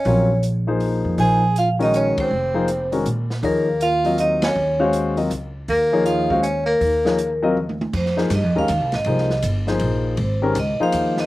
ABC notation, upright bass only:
X:1
M:3/4
L:1/8
Q:"Swing" 1/4=160
K:Ebdor
V:1 name="Upright bass" clef=bass
B,,,4- B,,, F,, | B,,,4- B,,, z | F,,,4 B,,2 | E,,6 |
E,,4 D,,2 | E,,6 | E,,6 | [K:Fm] F,,2 (3G,, F,, E,, (3E,, C,, A,,, |
C,,2 G,,,2 B,,,2 | A,,,2 D,, z E,,2 |]